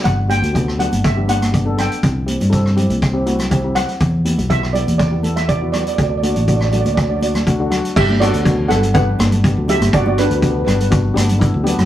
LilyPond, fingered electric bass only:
\new Staff \with { instrumentName = "Fingered electric bass" } { \clef bass \time 4/4 \key g \major \tempo 4 = 122 g,,8. d,4 g,,2 r16 | c,8. g,4 c,2 r16 | e,8. b,,4 e,2 r16 | d,8. a,,4 d,2 r16 |
g,,8. d,8. g,,4 g,,8. d,8 g,,16 | g,,8. d,8. g,,4 g,,8. d,8 fis,16 | }